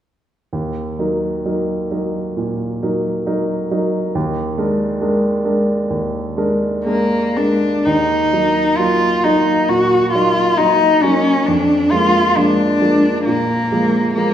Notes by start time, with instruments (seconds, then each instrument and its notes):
0.53 grand piano D#2
0.99 grand piano F#3 D#4 A#4
1.45 grand piano F#3 D#4 A#4
1.91 grand piano F#3 D#4 A#4
2.37 grand piano A#2
2.82 grand piano F#3 D#4 A#4
3.26 grand piano F#3 D#4 A#4
3.71 grand piano F#3 D#4 A#4
4.15 grand piano D#2
4.58 grand piano G#3 D4 A#4
5.01 grand piano G#3 D4 A#4
5.45 grand piano G#3 D4 A#4
5.90 grand piano D#2
6.37 grand piano G#3 D4 A#4
6.85 grand piano G#3 D4 A#4, cello A#3
7.37 grand piano G#3 D4 A#4, cello D4
7.85 grand piano D#2, cello D#4
8.33 grand piano F#3 A#3 D#4
8.77 grand piano F#3 A#3 D#4, cello F4
9.24 grand piano F#3 A#3 D#4, cello D#4
9.69 grand piano A#2, cello F#4
10.12 grand piano F#3 A#3 D#4, cello F4
10.57 grand piano F#3 A#3 D#4, cello D#4
11.03 grand piano F#3 A#3 D#4, cello C#4
11.46 grand piano F2, cello D4
11.91 grand piano F3 G#3 A#3, cello F4
12.36 grand piano F3 G#3 A#3, cello D4
12.81 grand piano F3 G#3 A#3
13.25 grand piano A#2, cello A#3
13.72 grand piano F3 G#3 A#3
14.15 grand piano F3 G#3 A#3, cello A#3